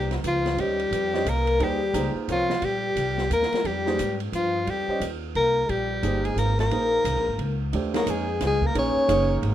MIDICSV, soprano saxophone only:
0, 0, Header, 1, 2, 480
1, 0, Start_track
1, 0, Tempo, 340329
1, 814, Time_signature, 3, 2, 24, 8
1, 13462, End_track
2, 0, Start_track
2, 0, Title_t, "Soprano saxophone"
2, 0, Program_c, 0, 64
2, 0, Note_on_c, 0, 67, 84
2, 172, Note_off_c, 0, 67, 0
2, 387, Note_on_c, 0, 65, 79
2, 849, Note_on_c, 0, 67, 89
2, 870, Note_off_c, 0, 65, 0
2, 1819, Note_on_c, 0, 70, 90
2, 1840, Note_off_c, 0, 67, 0
2, 2308, Note_on_c, 0, 67, 75
2, 2329, Note_off_c, 0, 70, 0
2, 3064, Note_off_c, 0, 67, 0
2, 3272, Note_on_c, 0, 65, 82
2, 3735, Note_on_c, 0, 67, 84
2, 3756, Note_off_c, 0, 65, 0
2, 4681, Note_off_c, 0, 67, 0
2, 4695, Note_on_c, 0, 70, 87
2, 5170, Note_on_c, 0, 67, 75
2, 5191, Note_off_c, 0, 70, 0
2, 5937, Note_off_c, 0, 67, 0
2, 6139, Note_on_c, 0, 65, 76
2, 6633, Note_on_c, 0, 67, 78
2, 6654, Note_off_c, 0, 65, 0
2, 7213, Note_off_c, 0, 67, 0
2, 7562, Note_on_c, 0, 70, 90
2, 8038, Note_on_c, 0, 67, 75
2, 8059, Note_off_c, 0, 70, 0
2, 8831, Note_on_c, 0, 68, 68
2, 8852, Note_off_c, 0, 67, 0
2, 8998, Note_off_c, 0, 68, 0
2, 9006, Note_on_c, 0, 70, 79
2, 9273, Note_off_c, 0, 70, 0
2, 9311, Note_on_c, 0, 70, 90
2, 10676, Note_off_c, 0, 70, 0
2, 11236, Note_on_c, 0, 70, 75
2, 11423, Note_on_c, 0, 68, 75
2, 11444, Note_off_c, 0, 70, 0
2, 11878, Note_off_c, 0, 68, 0
2, 11942, Note_on_c, 0, 68, 79
2, 12222, Note_on_c, 0, 70, 80
2, 12243, Note_off_c, 0, 68, 0
2, 12368, Note_off_c, 0, 70, 0
2, 12393, Note_on_c, 0, 73, 90
2, 13262, Note_off_c, 0, 73, 0
2, 13462, End_track
0, 0, End_of_file